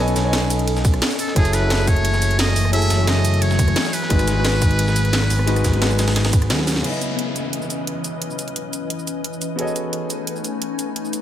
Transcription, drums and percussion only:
0.08 closed hi-hat, cabasa
0.16 snare, closed hi-hat, ride, cabasa
0.33 snare, closed hi-hat, ride
0.42 cross-stick
0.50 closed hi-hat, ride, cabasa
0.59 closed hi-hat
0.67 closed hi-hat, ride
0.76 snare, cabasa
0.85 kick, closed hi-hat, ride, cabasa
0.94 cross-stick, closed hi-hat
1.02 snare, closed hi-hat, ride
1.11 snare, cabasa
1.19 open hi-hat, ride, cabasa
1.28 snare
1.36 kick, closed hi-hat, ride
1.45 cross-stick, closed hi-hat, ride, cabasa
1.53 snare, closed hi-hat, ride, cabasa
1.70 snare, closed hi-hat, open hi-hat
1.79 cross-stick
1.88 kick, closed hi-hat, ride, cabasa
1.96 closed hi-hat
2.05 closed hi-hat, ride
2.14 snare, cabasa
2.22 closed hi-hat, ride, cabasa
2.31 closed hi-hat
2.39 snare, closed hi-hat, ride
2.48 cross-stick, snare
2.56 open hi-hat, ride, cabasa
2.65 cross-stick
2.73 closed hi-hat, ride
2.82 closed hi-hat, cabasa
2.90 snare, closed hi-hat, ride, cabasa
3.07 snare, closed hi-hat, ride
3.16 cross-stick
3.25 closed hi-hat, ride, cabasa
3.34 closed hi-hat
3.42 closed hi-hat, ride
3.51 snare, cabasa
3.59 kick, closed hi-hat, ride, cabasa
3.68 cross-stick, closed hi-hat
3.76 snare, closed hi-hat, ride
3.85 snare, cabasa
3.93 open hi-hat, ride, cabasa
4.02 snare
4.10 kick, closed hi-hat, ride
4.19 cross-stick, closed hi-hat, ride, cabasa
4.28 snare, closed hi-hat, ride, cabasa
4.45 snare, closed hi-hat, open hi-hat
4.53 cross-stick
4.62 kick, closed hi-hat, ride, cabasa
4.71 closed hi-hat
4.79 closed hi-hat, ride
4.88 snare, cabasa
4.96 closed hi-hat, ride, cabasa
5.05 closed hi-hat
5.13 snare, closed hi-hat, ride
5.22 cross-stick, snare
5.30 open hi-hat, ride, cabasa
5.39 cross-stick
5.47 closed hi-hat, ride
5.56 cross-stick, closed hi-hat, cabasa
5.64 kick, snare, closed hi-hat, ride, cabasa
5.73 closed hi-hat
5.82 snare, closed hi-hat, ride
5.91 cross-stick, cabasa
5.99 snare, closed hi-hat, open hi-hat, cabasa
6.08 snare, closed hi-hat, open hi-hat
6.16 snare, closed hi-hat, open hi-hat
6.25 snare, open hi-hat, cabasa
6.33 kick, closed hi-hat, ride, cabasa
6.42 cross-stick, closed hi-hat
6.50 snare, closed hi-hat, ride
6.59 snare
6.67 snare, open hi-hat, ride, cabasa
6.76 snare
6.84 closed hi-hat, crash
6.93 cabasa
7.02 closed hi-hat, cabasa
7.19 closed hi-hat
7.36 closed hi-hat, cabasa
7.53 closed hi-hat
7.62 cabasa
7.70 closed hi-hat, cabasa
7.87 closed hi-hat
8.04 closed hi-hat, cabasa
8.22 closed hi-hat
8.30 cabasa
8.39 closed hi-hat, cabasa
8.48 closed hi-hat
8.56 closed hi-hat
8.73 closed hi-hat, cabasa
8.90 closed hi-hat
8.99 cabasa
9.07 closed hi-hat, cabasa
9.24 closed hi-hat
9.33 cabasa
9.42 closed hi-hat, cabasa
9.59 closed hi-hat
9.68 cabasa
9.76 closed hi-hat, cabasa
9.93 closed hi-hat
10.10 closed hi-hat, cabasa
10.27 closed hi-hat
10.36 cabasa
10.45 closed hi-hat, cabasa
10.62 closed hi-hat
10.79 closed hi-hat, cabasa
10.96 closed hi-hat
11.05 cabasa
11.13 closed hi-hat, cabasa

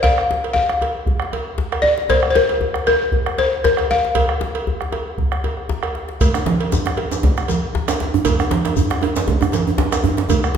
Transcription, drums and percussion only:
0.03 bombo low, cowbell, djembe slap, djembe bass
0.18 bombo rim
0.31 djembe slap, djembe tone
0.44 bombo rim, cowbell, djembe slap
0.56 djembe bass
0.69 bombo rim, djembe slap
0.81 bombo rim, cowbell, djembe tone
1.06 bombo low, djembe bass
1.20 bombo rim, djembe slap
1.32 bombo rim, cowbell, djembe tone
1.58 djembe slap, djembe bass
1.72 bombo rim, cowbell, djembe slap
1.84 djembe tone
1.98 djembe slap
2.09 bombo low, cowbell, djembe slap, djembe bass
2.23 bombo rim
2.36 djembe slap, djembe tone
2.49 bombo rim, cowbell, djembe slap
2.61 djembe bass
2.74 bombo rim, djembe slap
2.86 bombo rim, cowbell, djembe tone
3.12 bombo low, djembe bass
3.26 bombo rim, djembe slap
3.38 bombo rim, cowbell, djembe tone
3.65 djembe slap, djembe bass
3.77 bombo rim, cowbell, djembe slap
3.91 djembe tone
4.05 djembe slap
4.15 bombo low, cowbell, djembe bass
4.29 bombo rim
4.41 djembe slap, djembe tone
4.55 bombo rim, cowbell
4.67 djembe bass
4.81 bombo rim, djembe slap
4.92 bombo rim, cowbell, djembe tone
5.18 bombo low, djembe slap, djembe bass
5.32 bombo rim, djembe slap
5.44 cowbell, djembe tone
5.57 bombo rim
5.69 djembe slap, djembe bass
5.83 bombo rim, cowbell, djembe bass
5.95 bombo rim, djembe slap
6.09 djembe slap
6.21 bombo low, cowbell, djembe slap, djembe bass, low conga, shekere
6.34 bombo rim, djembe slap, shekere
6.46 djembe slap, djembe tone, high conga
6.60 bombo rim, cowbell, djembe slap
6.72 djembe slap, djembe bass, shekere
6.86 bombo rim, djembe slap
6.97 bombo rim, cowbell, djembe tone
7.12 djembe slap, shekere
7.23 bombo low, djembe slap, djembe bass, low conga
7.37 bombo rim, djembe slap, shekere
7.48 bombo rim, cowbell, high conga, djembe tone, shekere
7.75 djembe slap, djembe bass
7.88 bombo rim, cowbell, djembe slap, high conga, shekere
8.00 djembe slap, high conga, djembe tone
8.14 djembe slap, high conga, djembe bass
8.25 bombo low, cowbell, djembe slap, djembe bass, low conga, shekere
8.39 bombo rim, djembe tone, shekere
8.51 djembe slap, high conga, djembe tone
8.65 bombo rim, cowbell, djembe slap
8.76 djembe bass, shekere
8.90 bombo rim, djembe slap
9.01 bombo rim, cowbell, djembe tone
9.16 djembe slap, shekere
9.27 bombo low, djembe slap, djembe bass, low conga
9.41 bombo rim, djembe slap, djembe bass, shekere
9.52 bombo rim, cowbell, djembe slap, djembe tone, high conga, shekere
9.67 djembe tone
9.78 djembe slap, djembe bass
9.92 bombo rim, cowbell, djembe slap, high conga, shekere
10.04 djembe tone, high conga, djembe bass
10.17 djembe slap, high conga
10.29 bombo low, cowbell, djembe slap, djembe tone, djembe bass, low conga, shekere
10.43 bombo rim, shekere

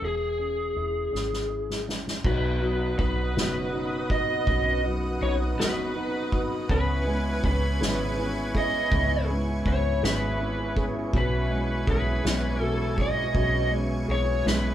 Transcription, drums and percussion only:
1.15 snare
1.33 snare
1.70 snare
1.89 snare
2.08 snare
2.24 kick, crash
2.62 ride
2.98 kick, ride
3.35 snare, ride
3.73 ride
4.10 kick, ride
4.47 kick, ride
4.85 ride
5.21 ride
5.58 snare, ride
5.95 ride
6.32 kick, ride
6.69 kick, ride
7.07 ride
7.43 kick, ride
7.80 snare, ride
8.17 ride
8.55 kick, ride
8.92 kick, ride
9.28 ride
9.65 kick, ride
10.02 snare, ride
10.39 ride
10.77 kick, ride
11.13 kick, ride
11.50 ride
11.87 kick, ride
12.23 snare, ride
12.61 ride
12.98 kick, ride
13.35 kick, ride
13.71 ride
14.08 ride
14.45 snare, ride

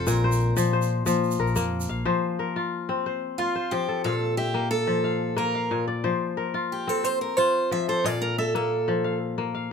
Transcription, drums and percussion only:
0.07 shaker
0.32 shaker
0.40 shaker
0.57 shaker
0.82 shaker
1.07 shaker
1.24 shaker
1.31 shaker
1.47 shaker
1.56 shaker
1.81 shaker

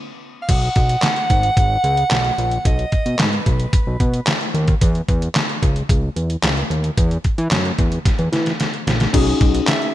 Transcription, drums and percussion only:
0.49 kick, closed hi-hat, crash
0.62 closed hi-hat
0.76 kick, closed hi-hat
0.89 closed hi-hat
1.02 snare, clap, closed hi-hat
1.16 closed hi-hat
1.30 kick, closed hi-hat
1.43 closed hi-hat
1.57 kick, closed hi-hat
1.84 closed hi-hat
1.97 closed hi-hat
2.11 snare, clap, closed hi-hat
2.25 closed hi-hat
2.38 closed hi-hat
2.51 closed hi-hat
2.65 kick, closed hi-hat
2.79 closed hi-hat
2.92 kick, closed hi-hat
3.06 closed hi-hat
3.19 snare, clap, closed hi-hat
3.33 closed hi-hat
3.46 kick, closed hi-hat
3.60 closed hi-hat
3.73 kick, closed hi-hat
4.00 kick, closed hi-hat
4.14 closed hi-hat
4.27 snare, clap, closed hi-hat
4.41 closed hi-hat
4.55 closed hi-hat
4.68 kick, closed hi-hat
4.81 kick, closed hi-hat
4.95 closed hi-hat
5.08 kick, closed hi-hat
5.22 closed hi-hat
5.35 snare, clap, closed hi-hat
5.49 closed hi-hat
5.63 kick, closed hi-hat
5.76 closed hi-hat
5.89 kick, closed hi-hat
6.16 closed hi-hat
6.30 closed hi-hat
6.43 snare, clap, closed hi-hat
6.57 closed hi-hat
6.71 closed hi-hat
6.84 closed hi-hat
6.98 kick, closed hi-hat
7.11 closed hi-hat
7.24 kick, closed hi-hat
7.38 closed hi-hat
7.51 snare, clap, closed hi-hat
7.65 closed hi-hat
7.79 kick, closed hi-hat
7.92 closed hi-hat
8.05 kick, snare, closed hi-hat
8.19 closed hi-hat
8.33 snare, closed hi-hat
8.46 snare, closed hi-hat
8.60 snare, closed hi-hat
8.74 closed hi-hat
8.87 snare, closed hi-hat
9.00 snare, closed hi-hat
9.14 kick, closed hi-hat, crash
9.27 closed hi-hat
9.41 kick, closed hi-hat
9.55 closed hi-hat
9.68 snare, clap, closed hi-hat
9.82 closed hi-hat

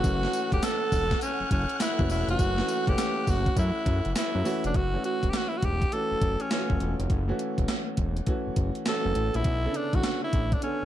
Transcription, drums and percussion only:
0.04 kick, closed hi-hat, tambourine
0.23 snare
0.33 closed hi-hat, tambourine
0.52 kick, closed hi-hat
0.62 snare, clap, closed hi-hat, tambourine
0.92 kick, open hi-hat, tambourine
1.11 kick, snare, closed hi-hat
1.21 closed hi-hat, tambourine
1.51 kick, closed hi-hat
1.69 closed hi-hat
1.80 snare, clap, closed hi-hat, tambourine
1.99 kick
2.10 open hi-hat, tambourine
2.29 closed hi-hat
2.39 kick, closed hi-hat, tambourine
2.58 snare
2.68 closed hi-hat, tambourine
2.87 kick, closed hi-hat
2.98 snare, clap, closed hi-hat, tambourine
3.27 kick, open hi-hat, tambourine
3.46 kick, closed hi-hat
3.57 kick, closed hi-hat, tambourine
3.86 kick, closed hi-hat
4.05 closed hi-hat
4.15 snare, clap, closed hi-hat, tambourine
4.45 open hi-hat, tambourine
4.64 closed hi-hat
4.74 kick, closed hi-hat
5.04 closed hi-hat
5.23 kick, closed hi-hat
5.33 snare, clap, closed hi-hat
5.62 kick, closed hi-hat
5.82 kick, closed hi-hat
5.92 closed hi-hat
6.21 kick, closed hi-hat
6.40 closed hi-hat
6.51 snare, clap, closed hi-hat
6.70 kick
6.80 closed hi-hat
7.00 closed hi-hat
7.10 kick, closed hi-hat
7.39 closed hi-hat
7.58 kick, closed hi-hat
7.68 snare, clap, closed hi-hat
7.97 kick, closed hi-hat
8.17 closed hi-hat
8.27 kick, closed hi-hat
8.56 kick, closed hi-hat
8.75 closed hi-hat
8.86 snare, clap, closed hi-hat
9.15 closed hi-hat
9.34 closed hi-hat
9.44 kick, closed hi-hat
9.74 closed hi-hat
9.93 kick, closed hi-hat
10.03 snare, clap, closed hi-hat
10.33 kick, closed hi-hat
10.52 kick, closed hi-hat
10.62 closed hi-hat

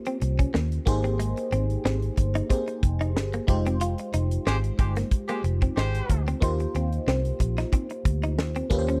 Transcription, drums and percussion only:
0.05 closed hi-hat
0.21 closed hi-hat
0.39 kick, closed hi-hat
0.55 snare
0.72 closed hi-hat
0.86 kick, closed hi-hat
1.05 closed hi-hat
1.19 closed hi-hat
1.37 closed hi-hat
1.52 closed hi-hat
1.70 closed hi-hat
1.86 snare
2.02 closed hi-hat
2.17 kick, closed hi-hat
2.35 closed hi-hat
2.50 kick, closed hi-hat
2.67 closed hi-hat
2.83 kick, closed hi-hat
3.01 closed hi-hat
3.17 snare
3.33 closed hi-hat
3.48 kick, closed hi-hat
3.66 closed hi-hat
3.81 closed hi-hat
3.98 closed hi-hat
4.13 closed hi-hat
4.31 closed hi-hat
4.47 snare
4.64 closed hi-hat
4.78 kick, closed hi-hat
4.96 snare, closed hi-hat
5.11 kick, closed hi-hat
5.28 closed hi-hat
5.44 closed hi-hat
5.62 kick, closed hi-hat
5.78 snare
5.94 closed hi-hat
6.09 kick, closed hi-hat
6.27 closed hi-hat
6.42 kick, closed hi-hat
6.59 closed hi-hat
6.75 closed hi-hat
6.92 closed hi-hat
7.08 snare
7.25 closed hi-hat
7.40 kick, closed hi-hat
7.57 snare, closed hi-hat
7.72 kick, closed hi-hat
7.90 closed hi-hat
8.05 kick, closed hi-hat
8.23 closed hi-hat
8.39 snare
8.55 closed hi-hat
8.70 kick, closed hi-hat
8.88 closed hi-hat

